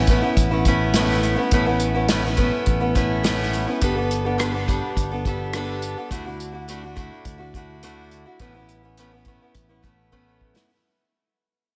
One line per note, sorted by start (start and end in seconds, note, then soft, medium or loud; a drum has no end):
0.00 0.20 A1 medium
0.07 0.23 A3 medium
0.07 0.21 B3 medium
0.07 0.22 C#4 medium
0.07 0.20 E4 medium
0.07 kick medium
0.07 closed hi-hat medium
0.22 0.51 B3 soft
0.22 0.51 C#4 soft
0.22 0.50 E4 soft
0.37 1.35 A1 medium
0.37 kick medium
0.37 closed hi-hat medium
0.51 0.66 B3 soft
0.51 0.66 C#4 soft
0.51 0.65 E4 soft
0.65 0.95 A3 medium
0.65 0.95 B3 medium
0.65 0.95 C#4 medium
0.65 0.96 E4 medium
0.65 kick medium
0.65 closed hi-hat medium
0.94 1.38 A2 medium
0.94 1.38 A3 medium
0.94 1.36 B3 medium
0.94 1.37 C#4 medium
0.94 1.35 E4 medium
0.94 snare loud
0.94 closed hi-hat medium
1.23 closed hi-hat medium
1.36 1.52 B3 medium
1.36 1.52 C#4 soft
1.36 1.51 E4 soft
1.51 2.50 A1 medium
1.51 1.66 A2 medium
1.51 1.67 A3 medium
1.51 1.65 B3 medium
1.51 1.67 C#4 medium
1.51 1.65 E4 medium
1.51 kick loud
1.51 closed hi-hat medium
1.66 1.94 B3 soft
1.66 1.95 C#4 soft
1.66 1.93 E4 medium
1.80 closed hi-hat medium
1.94 2.09 B3 soft
1.94 2.09 C#4 soft
1.94 2.09 E4 soft
2.08 2.24 A2 medium
2.08 2.24 A3 medium
2.08 2.23 B3 medium
2.08 2.24 C#4 medium
2.08 2.23 E4 medium
2.08 snare loud
2.08 closed hi-hat medium
2.24 2.37 B3 soft
2.24 2.37 C#4 soft
2.24 2.38 E4 soft
2.37 2.80 A3 medium
2.37 2.80 B3 medium
2.37 2.81 C#4 medium
2.37 2.79 E4 medium
2.37 kick medium
2.37 closed hi-hat medium
2.66 3.65 A1 medium
2.66 kick medium
2.66 closed hi-hat medium
2.80 2.95 B3 soft
2.80 2.94 C#4 soft
2.80 2.95 E4 medium
2.95 3.23 A3 medium
2.95 3.23 B3 medium
2.95 3.23 C#4 medium
2.95 3.23 E4 medium
2.95 kick medium
2.95 closed hi-hat medium
3.23 3.67 A2 medium
3.23 3.67 A3 medium
3.23 3.67 B3 medium
3.23 3.67 C#4 medium
3.23 3.66 E4 medium
3.23 snare loud
3.23 closed hi-hat medium
3.53 closed hi-hat soft
3.67 3.81 B3 soft
3.67 3.82 C#4 soft
3.67 3.81 E4 medium
3.81 4.80 G1 medium
3.81 3.96 G3 medium
3.81 3.95 B3 medium
3.81 3.96 D4 medium
3.81 3.94 A4 medium
3.81 kick loud
3.81 closed hi-hat medium
3.95 4.25 B3 soft
3.95 4.25 D4 soft
3.95 4.24 A4 medium
4.11 closed hi-hat medium
4.25 4.38 B3 soft
4.25 4.38 D4 soft
4.25 4.39 A4 soft
4.38 4.53 G3 medium
4.38 4.52 B3 medium
4.38 4.53 D4 medium
4.38 4.51 A4 medium
4.38 cross-stick loud
4.38 closed hi-hat medium
4.52 4.68 B3 soft
4.52 4.68 D4 soft
4.52 4.67 A4 medium
4.67 5.10 G3 medium
4.67 5.11 B3 medium
4.67 5.11 D4 medium
4.67 5.10 A4 medium
4.67 kick medium
4.67 closed hi-hat medium
4.96 5.95 G1 medium
4.96 kick medium
4.96 closed hi-hat medium
5.12 5.26 B3 soft
5.12 5.26 D4 soft
5.12 5.25 A4 medium
5.25 5.54 G3 medium
5.25 5.55 B3 medium
5.25 5.54 D4 medium
5.25 5.55 A4 medium
5.25 kick medium
5.25 closed hi-hat medium
5.53 5.97 G3 medium
5.53 5.97 B3 medium
5.53 5.97 D4 medium
5.53 5.96 A4 medium
5.53 cross-stick loud
5.53 closed hi-hat medium
5.82 closed hi-hat medium
5.97 6.11 B3 soft
5.97 6.11 D4 soft
5.97 6.11 A4 medium
6.10 7.09 D2 medium
6.10 6.25 D3 medium
6.10 6.25 A3 medium
6.10 6.26 D4 medium
6.10 6.23 E4 medium
6.10 6.25 F#4 medium
6.10 kick loud
6.10 closed hi-hat medium
6.25 6.54 D4 soft
6.25 6.51 E4 soft
6.25 6.52 F#4 medium
6.40 closed hi-hat medium
6.52 6.68 D4 soft
6.52 6.67 E4 medium
6.52 6.68 F#4 soft
6.68 6.82 D3 medium
6.68 6.83 A3 medium
6.68 6.83 D4 medium
6.68 6.82 E4 medium
6.68 6.83 F#4 medium
6.68 closed hi-hat medium
6.83 6.95 D4 soft
6.83 6.97 E4 soft
6.83 6.96 F#4 soft
6.96 7.39 A3 medium
6.96 7.39 D4 medium
6.96 7.37 E4 medium
6.96 7.38 F#4 medium
6.96 kick medium
6.96 closed hi-hat medium
7.25 8.24 D2 medium
7.25 kick medium
7.25 closed hi-hat medium
7.38 7.54 D4 soft
7.38 7.53 E4 soft
7.38 7.54 F#4 soft
7.54 7.82 A3 medium
7.54 7.82 D4 medium
7.54 7.83 E4 medium
7.54 7.82 F#4 medium
7.54 kick medium
7.54 closed hi-hat medium
7.83 8.26 D3 medium
7.83 8.26 A3 medium
7.83 8.26 D4 medium
7.83 8.24 E4 medium
7.83 8.26 F#4 medium
7.83 closed hi-hat medium
8.11 closed hi-hat soft
8.26 8.40 D4 soft
8.26 8.40 E4 medium
8.26 8.40 F#4 soft
8.39 9.38 A1 medium
8.39 8.55 A2 medium
8.39 8.55 A3 medium
8.39 8.54 B3 medium
8.39 8.55 C#4 medium
8.39 8.53 E4 medium
8.39 kick medium
8.39 closed hi-hat medium
8.55 8.83 B3 soft
8.55 8.84 C#4 soft
8.55 8.82 E4 medium
8.69 closed hi-hat medium
8.83 8.98 B3 soft
8.83 8.98 C#4 soft
8.83 8.98 E4 soft
8.97 9.12 A2 medium
8.97 9.12 A3 medium
8.97 9.12 B3 medium
8.97 9.13 C#4 medium
8.97 9.10 E4 medium
8.97 closed hi-hat medium
9.12 9.26 B3 soft
9.12 9.26 C#4 soft
9.12 9.26 E4 soft
9.25 9.41 A3 medium
9.25 9.41 B3 medium
9.25 9.41 C#4 medium
9.25 9.40 E4 medium
9.25 kick medium
9.25 closed hi-hat medium
9.42 9.68 B3 soft
9.42 9.69 C#4 soft
9.42 9.68 E4 soft
9.55 10.53 A1 medium
9.55 kick medium
9.55 closed hi-hat medium
9.69 9.83 B3 soft
9.69 9.82 C#4 soft
9.69 9.83 E4 soft
9.82 10.11 A3 medium
9.82 10.11 B3 medium
9.82 10.11 C#4 medium
9.82 10.12 E4 medium
9.82 kick medium
9.82 closed hi-hat medium
10.12 10.55 A2 medium
10.12 10.55 A3 medium
10.12 10.55 B3 medium
10.12 10.55 C#4 medium
10.12 10.54 E4 medium
10.12 kick soft
10.41 kick medium
10.55 10.70 B3 soft
10.55 10.71 C#4 soft
10.55 10.70 E4 medium
10.55 snare medium